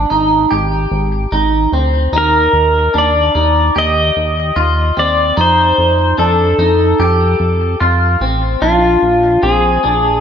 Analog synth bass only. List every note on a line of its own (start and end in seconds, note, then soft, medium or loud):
0.11 0.46 G#1 medium
0.52 0.87 G#1 medium
0.91 1.27 G#1 loud
1.32 1.68 G#1 medium
1.72 2.08 D2 loud
2.12 2.48 D#2 medium
2.53 2.89 D#2 medium
2.94 3.30 D#2 medium
3.35 3.71 D#2 medium
3.76 4.11 D#2 loud
4.16 4.52 D#2 loud
4.56 4.92 D#2 loud
4.97 5.33 D#2 medium
5.37 5.73 F2 medium
5.78 6.14 F2 medium
6.18 6.54 F2 medium
6.58 6.94 F2 medium
7.00 7.35 F2 loud
7.40 7.76 F2 loud
7.81 8.17 F2 loud
8.21 8.57 A1 loud
8.62 8.97 A#1 loud
9.03 9.38 A#1 loud
9.43 9.79 A#1 medium
9.84 10.20 A#1 medium